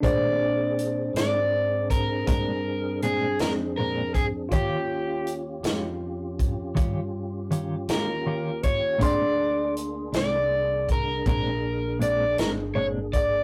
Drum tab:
HH |x-xx-xx-xx-x|x-xx-xx-xx-x|x-xx-xx-xx-x|
SD |---o-----o--|---o-----o--|---o-----o--|
BD |o----oo----o|o----oo----o|o----oo----o|